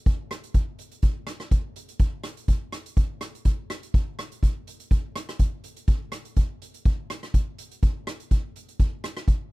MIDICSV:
0, 0, Header, 1, 2, 480
1, 0, Start_track
1, 0, Tempo, 484653
1, 60, Time_signature, 4, 2, 24, 8
1, 9429, End_track
2, 0, Start_track
2, 0, Title_t, "Drums"
2, 61, Note_on_c, 9, 36, 91
2, 64, Note_on_c, 9, 42, 50
2, 160, Note_off_c, 9, 36, 0
2, 163, Note_off_c, 9, 42, 0
2, 305, Note_on_c, 9, 37, 71
2, 305, Note_on_c, 9, 42, 66
2, 404, Note_off_c, 9, 37, 0
2, 404, Note_off_c, 9, 42, 0
2, 432, Note_on_c, 9, 42, 53
2, 531, Note_off_c, 9, 42, 0
2, 538, Note_on_c, 9, 42, 47
2, 539, Note_on_c, 9, 36, 76
2, 637, Note_off_c, 9, 42, 0
2, 638, Note_off_c, 9, 36, 0
2, 779, Note_on_c, 9, 42, 68
2, 878, Note_off_c, 9, 42, 0
2, 906, Note_on_c, 9, 42, 50
2, 1005, Note_off_c, 9, 42, 0
2, 1014, Note_on_c, 9, 42, 48
2, 1018, Note_on_c, 9, 36, 80
2, 1113, Note_off_c, 9, 42, 0
2, 1117, Note_off_c, 9, 36, 0
2, 1255, Note_on_c, 9, 37, 72
2, 1255, Note_on_c, 9, 42, 74
2, 1354, Note_off_c, 9, 37, 0
2, 1354, Note_off_c, 9, 42, 0
2, 1386, Note_on_c, 9, 37, 55
2, 1386, Note_on_c, 9, 42, 46
2, 1485, Note_off_c, 9, 37, 0
2, 1485, Note_off_c, 9, 42, 0
2, 1499, Note_on_c, 9, 36, 71
2, 1500, Note_on_c, 9, 42, 55
2, 1598, Note_off_c, 9, 36, 0
2, 1599, Note_off_c, 9, 42, 0
2, 1743, Note_on_c, 9, 42, 79
2, 1842, Note_off_c, 9, 42, 0
2, 1868, Note_on_c, 9, 42, 60
2, 1967, Note_off_c, 9, 42, 0
2, 1975, Note_on_c, 9, 42, 53
2, 1977, Note_on_c, 9, 36, 90
2, 2074, Note_off_c, 9, 42, 0
2, 2076, Note_off_c, 9, 36, 0
2, 2214, Note_on_c, 9, 37, 69
2, 2214, Note_on_c, 9, 42, 75
2, 2313, Note_off_c, 9, 37, 0
2, 2313, Note_off_c, 9, 42, 0
2, 2348, Note_on_c, 9, 42, 58
2, 2447, Note_off_c, 9, 42, 0
2, 2456, Note_on_c, 9, 42, 54
2, 2457, Note_on_c, 9, 36, 68
2, 2555, Note_off_c, 9, 42, 0
2, 2556, Note_off_c, 9, 36, 0
2, 2698, Note_on_c, 9, 37, 61
2, 2698, Note_on_c, 9, 42, 66
2, 2797, Note_off_c, 9, 37, 0
2, 2797, Note_off_c, 9, 42, 0
2, 2832, Note_on_c, 9, 42, 56
2, 2931, Note_off_c, 9, 42, 0
2, 2940, Note_on_c, 9, 36, 86
2, 2942, Note_on_c, 9, 42, 54
2, 3039, Note_off_c, 9, 36, 0
2, 3041, Note_off_c, 9, 42, 0
2, 3178, Note_on_c, 9, 37, 71
2, 3178, Note_on_c, 9, 42, 75
2, 3277, Note_off_c, 9, 37, 0
2, 3277, Note_off_c, 9, 42, 0
2, 3317, Note_on_c, 9, 42, 52
2, 3416, Note_off_c, 9, 42, 0
2, 3417, Note_on_c, 9, 42, 56
2, 3420, Note_on_c, 9, 36, 71
2, 3516, Note_off_c, 9, 42, 0
2, 3519, Note_off_c, 9, 36, 0
2, 3665, Note_on_c, 9, 37, 67
2, 3665, Note_on_c, 9, 42, 71
2, 3764, Note_off_c, 9, 37, 0
2, 3764, Note_off_c, 9, 42, 0
2, 3793, Note_on_c, 9, 42, 54
2, 3892, Note_off_c, 9, 42, 0
2, 3903, Note_on_c, 9, 36, 96
2, 3906, Note_on_c, 9, 42, 50
2, 4002, Note_off_c, 9, 36, 0
2, 4005, Note_off_c, 9, 42, 0
2, 4147, Note_on_c, 9, 37, 69
2, 4147, Note_on_c, 9, 42, 69
2, 4246, Note_off_c, 9, 37, 0
2, 4246, Note_off_c, 9, 42, 0
2, 4276, Note_on_c, 9, 42, 53
2, 4375, Note_off_c, 9, 42, 0
2, 4384, Note_on_c, 9, 36, 73
2, 4390, Note_on_c, 9, 42, 50
2, 4483, Note_off_c, 9, 36, 0
2, 4489, Note_off_c, 9, 42, 0
2, 4629, Note_on_c, 9, 42, 65
2, 4728, Note_off_c, 9, 42, 0
2, 4753, Note_on_c, 9, 42, 53
2, 4852, Note_off_c, 9, 42, 0
2, 4862, Note_on_c, 9, 36, 79
2, 4866, Note_on_c, 9, 42, 48
2, 4961, Note_off_c, 9, 36, 0
2, 4965, Note_off_c, 9, 42, 0
2, 5106, Note_on_c, 9, 37, 76
2, 5106, Note_on_c, 9, 42, 69
2, 5205, Note_off_c, 9, 37, 0
2, 5205, Note_off_c, 9, 42, 0
2, 5238, Note_on_c, 9, 37, 59
2, 5238, Note_on_c, 9, 42, 53
2, 5337, Note_off_c, 9, 37, 0
2, 5337, Note_off_c, 9, 42, 0
2, 5342, Note_on_c, 9, 42, 57
2, 5343, Note_on_c, 9, 36, 75
2, 5441, Note_off_c, 9, 42, 0
2, 5442, Note_off_c, 9, 36, 0
2, 5584, Note_on_c, 9, 42, 69
2, 5683, Note_off_c, 9, 42, 0
2, 5710, Note_on_c, 9, 42, 58
2, 5809, Note_off_c, 9, 42, 0
2, 5822, Note_on_c, 9, 36, 94
2, 5822, Note_on_c, 9, 42, 54
2, 5921, Note_off_c, 9, 36, 0
2, 5921, Note_off_c, 9, 42, 0
2, 6060, Note_on_c, 9, 37, 69
2, 6060, Note_on_c, 9, 42, 77
2, 6159, Note_off_c, 9, 37, 0
2, 6159, Note_off_c, 9, 42, 0
2, 6191, Note_on_c, 9, 42, 55
2, 6290, Note_off_c, 9, 42, 0
2, 6303, Note_on_c, 9, 42, 55
2, 6305, Note_on_c, 9, 36, 73
2, 6403, Note_off_c, 9, 42, 0
2, 6404, Note_off_c, 9, 36, 0
2, 6555, Note_on_c, 9, 42, 74
2, 6654, Note_off_c, 9, 42, 0
2, 6677, Note_on_c, 9, 42, 54
2, 6776, Note_off_c, 9, 42, 0
2, 6788, Note_on_c, 9, 42, 49
2, 6789, Note_on_c, 9, 36, 92
2, 6887, Note_off_c, 9, 42, 0
2, 6888, Note_off_c, 9, 36, 0
2, 7033, Note_on_c, 9, 37, 75
2, 7033, Note_on_c, 9, 42, 73
2, 7132, Note_off_c, 9, 37, 0
2, 7132, Note_off_c, 9, 42, 0
2, 7161, Note_on_c, 9, 37, 56
2, 7161, Note_on_c, 9, 42, 53
2, 7260, Note_off_c, 9, 37, 0
2, 7260, Note_off_c, 9, 42, 0
2, 7270, Note_on_c, 9, 36, 75
2, 7273, Note_on_c, 9, 42, 58
2, 7369, Note_off_c, 9, 36, 0
2, 7372, Note_off_c, 9, 42, 0
2, 7513, Note_on_c, 9, 42, 79
2, 7612, Note_off_c, 9, 42, 0
2, 7639, Note_on_c, 9, 42, 57
2, 7738, Note_off_c, 9, 42, 0
2, 7752, Note_on_c, 9, 36, 87
2, 7752, Note_on_c, 9, 42, 53
2, 7851, Note_off_c, 9, 36, 0
2, 7851, Note_off_c, 9, 42, 0
2, 7993, Note_on_c, 9, 37, 79
2, 7993, Note_on_c, 9, 42, 71
2, 8092, Note_off_c, 9, 37, 0
2, 8092, Note_off_c, 9, 42, 0
2, 8120, Note_on_c, 9, 42, 51
2, 8219, Note_off_c, 9, 42, 0
2, 8230, Note_on_c, 9, 42, 52
2, 8231, Note_on_c, 9, 36, 73
2, 8329, Note_off_c, 9, 42, 0
2, 8330, Note_off_c, 9, 36, 0
2, 8476, Note_on_c, 9, 42, 65
2, 8575, Note_off_c, 9, 42, 0
2, 8602, Note_on_c, 9, 42, 52
2, 8701, Note_off_c, 9, 42, 0
2, 8711, Note_on_c, 9, 36, 83
2, 8711, Note_on_c, 9, 42, 48
2, 8810, Note_off_c, 9, 36, 0
2, 8810, Note_off_c, 9, 42, 0
2, 8952, Note_on_c, 9, 37, 78
2, 8952, Note_on_c, 9, 42, 71
2, 9051, Note_off_c, 9, 37, 0
2, 9051, Note_off_c, 9, 42, 0
2, 9078, Note_on_c, 9, 37, 63
2, 9078, Note_on_c, 9, 42, 50
2, 9177, Note_off_c, 9, 37, 0
2, 9177, Note_off_c, 9, 42, 0
2, 9187, Note_on_c, 9, 36, 80
2, 9191, Note_on_c, 9, 42, 54
2, 9286, Note_off_c, 9, 36, 0
2, 9290, Note_off_c, 9, 42, 0
2, 9429, End_track
0, 0, End_of_file